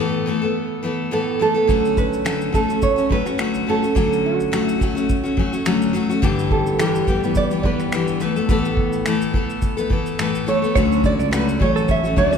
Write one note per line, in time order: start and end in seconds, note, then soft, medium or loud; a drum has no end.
0.00 0.26 A2 medium
0.00 0.25 E3 medium
0.00 0.26 A3 medium
0.00 0.27 B3 medium
0.00 0.28 A4 medium
0.00 1.07 B4 medium
0.26 0.42 E3 medium
0.26 0.43 A3 medium
0.26 0.42 B3 medium
0.26 0.40 A4 medium
0.42 0.82 A3 soft
0.42 0.83 B3 soft
0.42 0.83 A4 medium
0.83 1.11 E3 medium
0.83 1.11 A3 medium
0.83 1.12 B3 medium
0.83 1.12 A4 medium
1.11 1.40 A2 medium
1.11 1.38 E3 medium
1.11 1.40 A3 medium
1.11 1.41 B3 medium
1.11 1.39 A4 medium
1.11 1.41 A4 medium
1.39 1.56 E3 medium
1.39 1.56 A3 medium
1.39 1.55 B3 medium
1.39 1.98 A4 medium
1.39 1.53 A4 medium
1.54 1.68 A3 soft
1.54 1.69 B3 soft
1.54 1.68 A4 medium
1.67 2.24 D3 medium
1.67 2.24 F#3 medium
1.67 2.25 A3 medium
1.67 2.25 C#4 medium
1.67 2.26 F#4 medium
1.67 kick loud
1.67 shaker medium
1.85 shaker soft
1.97 2.54 B4 medium
1.97 kick medium
1.97 shaker soft
2.13 shaker soft
2.25 2.54 D3 medium
2.25 2.51 F#3 medium
2.25 2.53 A3 medium
2.25 2.54 C#4 medium
2.25 2.55 F#4 medium
2.25 finger snap loud
2.25 shaker medium
2.41 shaker soft
2.52 2.69 F#3 medium
2.52 2.70 A3 medium
2.52 2.69 C#4 medium
2.52 2.67 F#4 medium
2.52 2.83 A4 medium
2.52 kick medium
2.52 shaker medium
2.68 2.98 A3 soft
2.68 2.97 C#4 soft
2.68 2.95 F#4 soft
2.68 shaker soft
2.82 3.12 C#5 medium
2.82 kick medium
2.82 shaker medium
2.96 3.09 A3 soft
2.96 3.11 C#4 soft
2.96 3.10 F#4 soft
2.96 shaker soft
3.09 3.26 F#3 soft
3.09 3.26 A3 medium
3.09 3.26 C#4 medium
3.09 3.24 F#4 medium
3.09 3.69 B4 medium
3.09 kick medium
3.26 3.38 A3 soft
3.26 3.39 C#4 soft
3.26 3.39 F#4 soft
3.26 finger snap soft
3.26 shaker soft
3.38 3.67 D3 medium
3.38 3.65 F#3 medium
3.38 3.66 A3 medium
3.38 3.67 C#4 medium
3.38 3.68 F#4 medium
3.38 finger snap medium
3.38 shaker medium
3.54 shaker soft
3.67 3.83 F#3 soft
3.67 3.83 A3 medium
3.67 3.83 C#4 medium
3.67 3.81 F#4 medium
3.67 4.27 A4 medium
3.82 3.95 A3 soft
3.82 3.96 C#4 soft
3.82 3.95 F#4 soft
3.82 shaker soft
3.95 4.51 D3 medium
3.95 4.51 F#3 medium
3.95 4.52 A3 medium
3.95 4.52 C#4 medium
3.95 4.53 F#4 medium
3.95 kick loud
3.95 shaker medium
4.13 shaker soft
4.26 4.78 F#4 medium
4.40 shaker soft
4.52 4.80 D3 medium
4.52 4.79 F#3 medium
4.52 4.80 A3 medium
4.52 4.81 C#4 medium
4.52 4.81 F#4 medium
4.52 finger snap loud
4.52 shaker medium
4.69 shaker medium
4.80 4.96 F#3 soft
4.80 4.97 A3 medium
4.80 4.95 C#4 medium
4.80 4.94 F#4 medium
4.80 kick medium
4.80 shaker medium
4.95 5.25 A3 soft
4.95 5.24 C#4 soft
4.95 5.22 F#4 soft
4.95 shaker soft
5.09 kick medium
5.09 shaker medium
5.23 5.37 A3 soft
5.23 5.38 C#4 soft
5.23 5.37 F#4 soft
5.23 shaker soft
5.37 5.53 F#3 medium
5.37 5.53 A3 medium
5.37 5.53 C#4 medium
5.37 5.51 F#4 medium
5.37 kick medium
5.53 5.66 A3 soft
5.53 5.66 C#4 soft
5.53 5.66 F#4 medium
5.53 shaker soft
5.65 5.94 D3 medium
5.65 5.92 F#3 medium
5.65 5.93 A3 medium
5.65 5.94 C#4 medium
5.65 5.95 F#4 medium
5.65 finger snap loud
5.65 shaker medium
5.82 shaker soft
5.93 6.09 F#3 medium
5.93 6.10 A3 medium
5.93 6.10 C#4 medium
5.93 6.08 F#4 medium
5.93 shaker soft
6.09 6.23 A3 soft
6.09 6.23 C#4 soft
6.09 6.22 F#4 medium
6.09 shaker soft
6.22 6.77 G2 medium
6.22 6.78 D3 medium
6.22 6.79 E3 medium
6.22 6.79 G3 medium
6.22 6.80 B3 medium
6.22 6.79 G4 medium
6.22 kick loud
6.22 shaker medium
6.39 shaker soft
6.51 6.77 A4 medium
6.51 kick medium
6.67 shaker soft
6.79 7.07 G2 medium
6.79 7.07 D3 medium
6.79 7.06 E3 medium
6.79 7.07 G3 medium
6.79 7.08 B3 medium
6.79 7.08 G4 medium
6.79 7.33 B4 medium
6.79 finger snap loud
6.79 shaker medium
6.95 shaker medium
7.07 7.23 E3 medium
7.07 7.23 G3 medium
7.07 7.23 B3 medium
7.07 7.21 G4 medium
7.07 kick medium
7.07 shaker medium
7.23 7.53 E3 soft
7.23 7.52 G3 soft
7.23 7.51 B3 soft
7.23 7.50 G4 soft
7.23 shaker soft
7.35 7.65 D5 loud
7.35 kick medium
7.35 shaker medium
7.51 7.62 E3 soft
7.51 7.63 G3 soft
7.51 7.64 B3 soft
7.51 7.64 G4 soft
7.51 shaker soft
7.63 7.92 E3 medium
7.63 7.93 G3 soft
7.63 7.93 B3 medium
7.63 7.93 G4 medium
7.63 8.20 B4 medium
7.63 kick medium
7.80 finger snap soft
7.80 shaker soft
7.92 8.21 G2 medium
7.92 8.21 D3 medium
7.92 8.19 E3 medium
7.92 8.21 G3 medium
7.92 8.21 B3 medium
7.92 8.22 G4 medium
7.92 finger snap loud
7.92 shaker medium
8.07 shaker soft
8.20 8.36 E3 medium
8.20 8.37 A3 medium
8.20 8.37 B3 medium
8.20 8.35 A4 medium
8.20 8.50 B4 medium
8.20 shaker soft
8.36 8.49 A3 soft
8.36 8.49 B3 soft
8.36 8.49 A4 soft
8.36 shaker soft
8.49 9.04 A2 medium
8.49 9.05 E3 medium
8.49 9.06 A3 medium
8.49 9.06 B3 medium
8.49 9.31 A4 medium
8.49 9.07 A4 medium
8.49 kick loud
8.49 shaker medium
8.65 shaker soft
8.77 kick medium
8.93 shaker soft
9.05 9.34 A2 medium
9.05 9.32 E3 medium
9.05 9.34 A3 medium
9.05 9.35 B3 medium
9.05 9.35 A4 medium
9.05 finger snap loud
9.05 shaker medium
9.21 shaker medium
9.34 9.78 E3 medium
9.34 9.78 A3 medium
9.34 9.78 B3 medium
9.34 9.76 A4 medium
9.34 kick medium
9.50 shaker soft
9.62 kick medium
9.62 shaker medium
9.77 9.90 A3 soft
9.77 9.91 B3 soft
9.77 9.90 A4 medium
9.77 shaker soft
9.90 10.18 E3 medium
9.90 10.19 A3 medium
9.90 10.19 B3 medium
9.90 10.19 A4 medium
9.90 kick medium
10.06 shaker soft
10.19 10.47 A2 medium
10.19 10.45 E3 medium
10.19 10.47 A3 medium
10.19 10.47 B3 medium
10.19 10.48 A4 medium
10.19 10.47 B4 medium
10.19 finger snap medium
10.19 shaker medium
10.35 shaker soft
10.46 10.62 E3 medium
10.46 10.63 A3 medium
10.46 10.63 B3 medium
10.46 10.61 A4 medium
10.46 11.05 C#5 medium
10.46 shaker soft
10.62 10.75 A3 soft
10.62 10.76 B3 soft
10.62 10.75 A4 soft
10.62 shaker soft
10.75 11.16 D2 medium
10.75 11.31 D3 medium
10.75 11.31 F#3 medium
10.75 11.31 A3 medium
10.75 11.32 C#4 medium
10.75 11.33 F#4 medium
10.75 11.02 C#5 medium
10.75 kick loud
10.75 shaker medium
10.92 shaker soft
11.04 11.61 D5 medium
11.04 kick medium
11.04 shaker medium
11.19 11.57 C#2 medium
11.19 11.32 D5 medium
11.19 shaker soft
11.31 11.60 D3 medium
11.31 11.58 F#3 medium
11.31 11.60 A3 medium
11.31 11.60 C#4 medium
11.31 11.61 F#4 medium
11.31 11.47 B4 medium
11.31 finger snap loud
11.31 shaker medium
11.48 shaker soft
11.60 12.13 A1 medium
11.60 12.04 F#3 medium
11.60 12.04 A3 medium
11.60 12.04 C#4 medium
11.60 12.02 F#4 medium
11.60 11.90 C#5 medium
11.60 kick medium
11.76 11.88 A4 medium
11.76 shaker soft
11.88 12.03 C#5 medium
11.88 12.17 E5 medium
11.88 kick medium
11.88 shaker medium
12.04 12.16 A3 soft
12.04 12.17 C#4 soft
12.04 12.17 F#4 medium
12.04 shaker soft
12.16 12.38 D2 medium
12.16 12.32 F#3 medium
12.16 12.33 A3 medium
12.16 12.31 C#4 medium
12.16 12.30 F#4 medium
12.16 12.38 D5 medium
12.16 kick medium
12.16 shaker soft
12.31 12.38 A3 soft
12.31 12.38 C#4 soft
12.31 12.38 F#4 soft
12.31 12.38 A4 medium
12.31 shaker soft